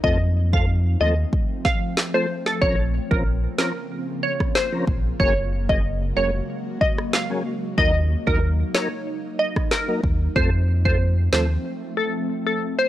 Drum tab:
CP |------------x---|------x-----x---|------------x---|------x-----x---|
SD |----------o-o--o|------o----ro---|-----------ro---|------o----ro---|
BD |o--o----o-o-----|o--o-------o--o-|o--o------o-----|o--o-------o--o-|

CP |------x---------|
SD |------o---------|
BD |o--o------------|